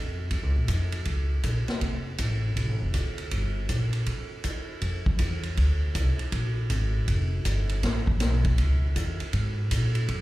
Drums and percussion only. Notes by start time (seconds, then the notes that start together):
0.31 kick, ride
0.68 kick, hi-hat pedal, ride
0.92 ride
1.05 kick, ride
1.43 kick, hi-hat pedal, ride
1.68 snare, ride
1.81 kick, ride
2.18 kick, hi-hat pedal, ride
2.57 kick, ride
2.94 kick, hi-hat pedal, ride
3.18 ride
3.31 kick, ride
3.69 kick, hi-hat pedal, ride
3.93 ride
4.06 kick, ride
4.44 kick, hi-hat pedal, ride
4.81 kick, ride
5.06 kick
5.19 kick, hi-hat pedal, ride
5.43 ride
5.57 kick, ride
5.95 kick, hi-hat pedal, ride
6.19 ride
6.32 kick, ride
6.70 kick, hi-hat pedal, ride
7.08 kick, ride
7.45 kick, hi-hat pedal, ride
7.69 ride
7.83 kick, snare, ride
8.07 kick
8.20 kick, snare, hi-hat pedal, ride
8.45 kick, ride
8.58 kick, ride
8.96 kick, hi-hat pedal, ride
9.20 ride
9.33 kick, ride
9.71 kick, hi-hat pedal, ride
9.95 ride
10.08 kick, ride